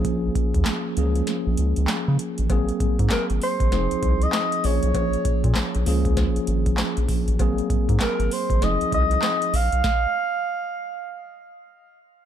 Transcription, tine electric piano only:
X:1
M:4/4
L:1/8
Q:"Swing 16ths" 1/4=98
K:Bbm
V:1 name="Tine electric piano"
[F,B,DA]3 [=E,F,B,DA]4- [E,F,B,DA] | [G,B,CA]4 [F,CEA]3 [F,B,DA]- | [F,B,DA]3 [F,B,DA]4- [F,B,DA] | [G,B,CA]4 [F,CEA]3 z |
z8 |]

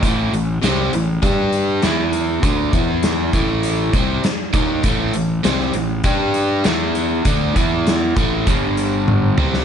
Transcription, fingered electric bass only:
X:1
M:4/4
L:1/8
Q:1/4=100
K:Am
V:1 name="Fingered electric bass" clef=bass
A,,, A,,, C,, A,,, G,,2 E,,2 | D,, E,,2 A,,,2 C,, z ^D,, | A,,, A,,, C,, A,,, G,,2 E,,2 | D,, E,,2 A,,, G,,,3 C,, |]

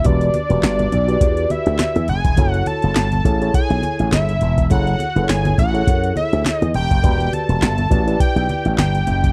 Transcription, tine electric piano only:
X:1
M:4/4
L:1/16
Q:"Swing 16ths" 1/4=103
K:Edor
V:1 name="Tine electric piano"
[FGBd]2 z [FGBd]3 z [FGBd]6 z3 | [EFAc]4- [EFAc] z [E^GAc] [EGAc]6 z3 | [E^GAc]2 z [EGABc]3 z [EGAc]6 z3 | [FGBd]4- [FGBd] z [FGBd] [EGBd]6 z3 |]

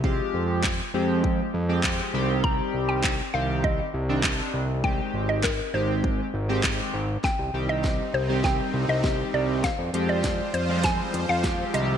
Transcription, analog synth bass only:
X:1
M:4/4
L:1/16
Q:1/4=100
K:Cm
V:1 name="Analog synth bass" clef=bass
C,,2 F,,4 F,,4 F,,4 C,,2- | C,,2 C,,4 C,,4 C,,4 C,,2- | C,,2 A,,,4 A,,,4 A,,,4 A,,,2 | z C,, C,,4 C,,4 C,, C,,3 C,,2- |
C,, F,, F,,4 F,,4 F,, F,,3 C,,2 |]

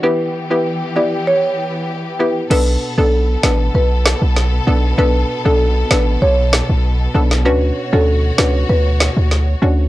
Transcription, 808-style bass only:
X:1
M:4/4
L:1/16
Q:1/4=97
K:Bm
V:1 name="808-style bass" clef=bass
z16 | B,,,2 z B,,,3 A,,,2 B,,,3 B,,,3 B,,,2 | B,,,2 z B,,,3 A,,,2 B,,,3 B,,,3 B,,,2 | D,,2 z D,,3 C,,2 D,,3 D,,3 D,,2 |]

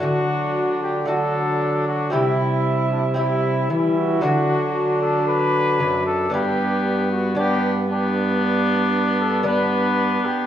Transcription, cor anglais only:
X:1
M:4/4
L:1/8
Q:1/4=114
K:Dmix
V:1 name="Cor anglais"
D4 D4 | E4 E2 E2 | D8 | D3 z D2 D2- |
D4 D4 |]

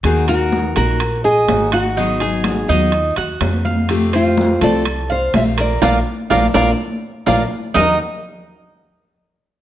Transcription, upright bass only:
X:1
M:4/4
L:1/8
Q:1/4=124
K:Ebm
V:1 name="Upright bass" clef=bass
E,,3 B,,,3 A,,,2- | A,,,3 E,,2 E,, F,,2- | F,,3 =C,,3 B,,,2 | B,,, z B,,, B,,, z2 B,,, z |
E,, z6 z |]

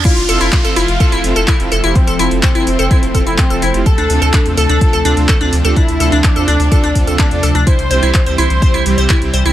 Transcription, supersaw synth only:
X:1
M:4/4
L:1/16
Q:1/4=126
K:F
V:1 name="Supersaw synth"
z2 [CEFA]2 z [CEFA] z2 [CEFA] z [CEFA] [CEFA] z [CEFA] z [CEFG] | z2 [CEFA]2 z [CEFA] z2 [CEFA] z [CEFA] [CEFA] z [CEFA] z [CEFG] | z2 [CDFA]2 z [CDFA] z2 [CDFA] z [CDFA] [CDFA] z [CDFA] z [CDFG] | z2 [CDFA]2 z [CDFA] z2 [CDFA] z [CDFA] [CDFA]2 [CDFA] z2 |
z2 [G,CEG]2 z [G,CEG] z2 [G,CEG] z [G,CEG] [G,CEG] z [G,CEG] z [G,CEG] |]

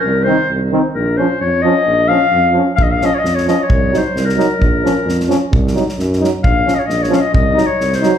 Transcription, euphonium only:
X:1
M:2/4
L:1/8
Q:"Swing 16ths" 1/4=132
K:Bbm
V:1 name="Euphonium" clef=bass
z E, z E, | z F, z F, | z F, z F, | z F, z F, |
z G, z G, | z F, z F, | z G, z G, | z F, z F, |
z G, z G, |]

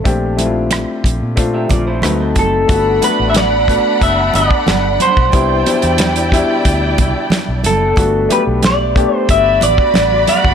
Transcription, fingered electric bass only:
X:1
M:4/4
L:1/16
Q:1/4=91
K:Bblyd
V:1 name="Fingered electric bass" clef=bass
B,,,4- B,,, z B,,, B,,3 B,,,2 D,,2 ^F,,,2 | [K:G] G,,,2 z A,,,4 z F,,,2 G,,, z G,,,2 z B,,, | C,,2 z E,,4 z D,,2 C,, z2 B,,, F,,,2 | G,,,2 z B,,,4 z G,,,2 A,,, z A,,,2 z F,,, |]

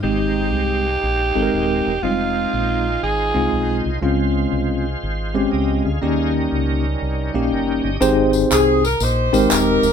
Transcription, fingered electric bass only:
X:1
M:4/4
L:1/8
Q:"Swing" 1/4=120
K:Ab
V:1 name="Fingered electric bass" clef=bass
A,,,2 C,,2 B,,, A,,, E,,, _F,,, | F,,,2 B,,,2 A,,, C,, _C,, =C,, | D,,2 C,,2 A,,,2 D,, =D,, | E,,2 D,,2 C,, B,,, _G,,, =G,,, |
A,,,2 C,,2 B,,, A,,, E,,, _F,,, |]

